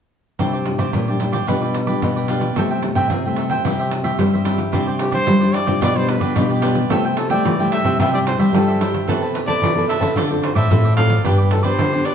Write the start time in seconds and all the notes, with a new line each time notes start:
0.39 C3 G3 D4 E4 G4 C5 D5, pandeiro
0.53 G4 C5 D5, pandeiro
0.65 G3 D4 E4, muted cavaquinho stroke, pandeiro
0.78 C3 G4 C5 D5, pandeiro
0.93 A#2 G3, pandeiro
1.08 G3 D4 E4 G4 C5 D5, pandeiro
1.20 G3 E4 G4 C5 D5, pandeiro
1.33 G4 C5 D5, pandeiro
1.47 B2 G3 D4 F4 G4 B4 D5, pandeiro
1.61 G4 B4 D5, pandeiro
1.74 muted cavaquinho stroke, pandeiro
1.87 G3 D4 F4 G4 B4 D5, pandeiro
2.02 B2 F4 G4 B4 D5, pandeiro
2.16 G4 B4 D5, pandeiro
2.28 G3 D4 F4 G4 B4 D5, pandeiro
2.41 pandeiro
2.56 C3 G3 A3 E4 A4 C5 E5 G5, pandeiro
2.70 C5 E5 G5, pandeiro
2.83 G3 A3 E4, muted cavaquinho stroke, pandeiro
2.95 C3 C5 E5 G5, pandeiro
3.10 C3, pandeiro
3.25 G3 A3 E4 C5 E5 G5, pandeiro
3.36 A4 C5 E5 G5, pandeiro
3.50 C5 E5 G5, pandeiro
3.65 C3 G3 C4 E4 G4 C5 E5, pandeiro
3.79 G4 C5 E5, pandeiro
3.91 muted cavaquinho stroke, pandeiro
4.04 G3 C4 E4 G4 C5 E5, pandeiro
4.19 G2 G3 E4 G4 C5 E5, pandeiro
4.33 G3 C4 E4 G4 C5 E5, pandeiro
4.45 G3 C4 E4 G4 C5 E5, pandeiro
4.58 pandeiro
4.72 C3 G3 D4 E4 G4 C5 D5, pandeiro
4.87 G4 C5 D5, pandeiro
4.99 G4, muted cavaquinho stroke, pandeiro
5.11 G3 D4 E4 G4 C5 D5, pandeiro
5.27 G3, pandeiro
5.41 G3 D4 E4 G4 C5 D5, pandeiro
5.53 E4 G4 C5 D5, pandeiro
5.65 C3 G3 D4 F4 G4 C5 D5, pandeiro
5.81 B2 F4 G4 B4 D5, pandeiro
5.95 G3 D4 F4 G4 B4 C5 D5, pandeiro
6.07 B4, muted cavaquinho stroke, pandeiro
6.20 D3 G4 B4 D5, pandeiro
6.35 B2 G3 D4 F4 G4 B4 D5, pandeiro
6.49 G4 B4 D5, pandeiro
6.62 G3 D4 F4 G4 B4 D5, pandeiro
6.75 pandeiro
6.90 C3 G3 A3 E4 A4 C5 E5 G5, pandeiro
7.04 C5 E5 G5, pandeiro
7.17 A4, muted cavaquinho stroke, pandeiro
7.30 G3 A3 E4 C5 D5 E5 G5, pandeiro
7.45 C3 E3, pandeiro
7.59 G3 A3 E4 C5 E5 G5, pandeiro
7.71 A4 C5 E5 G5, pandeiro
7.84 C3 G3 C4 E4 C5 E5 G5, pandeiro
7.99 C3 E4 G4 C5 E5, pandeiro
8.14 G3 C4 E4 G4 C5 D5 E5, pandeiro
8.26 C5, muted cavaquinho stroke, pandeiro
8.38 G3 G4 C5 E5, pandeiro
8.53 G2 G3 C4 E4 G4 A4 C5 E5, pandeiro
8.68 G4 C5 E5, pandeiro
8.80 G3 C4 E4 G4 C5 E5, pandeiro
8.94 pandeiro
9.08 C3 B3 E4 A4 B4 C5 A5, pandeiro
9.22 B4 C5 A5, pandeiro
9.33 B4, muted cavaquinho stroke, pandeiro
9.46 B3 E4 A4 B4 C5 D5 A5, pandeiro
9.62 C3 E3, pandeiro
9.76 B3 E4 A4 B4 C5 A5, pandeiro
9.88 A4 B4 C5 E5 A5, pandeiro
10.00 C#3 C4 F4 A4 B4 C5 A5, pandeiro
10.16 D3 F4 A4 C5 D5, pandeiro
10.30 C4 F4 A4 C5 D5, pandeiro
10.42 C5, muted cavaquinho stroke, pandeiro
10.55 A2 A4 C5 D5 E5, pandeiro
10.70 A2 C4 F4 A4 C5 D5, pandeiro
10.84 A4 C5 D5, pandeiro
10.96 C4 F4 A4 C5 D5 F5, pandeiro
11.10 pandeiro
11.24 G2 G3 B3 D4 G4 B4 D5, pandeiro
11.38 G4 B4 D5, pandeiro
11.50 A4, muted cavaquinho stroke, pandeiro
11.63 B3 D4 G4 B4 C5 D5, pandeiro
11.79 D3, pandeiro
11.92 B3 D4 G4 B4 D5, pandeiro
12.04 D4 G4 B4 D5, pandeiro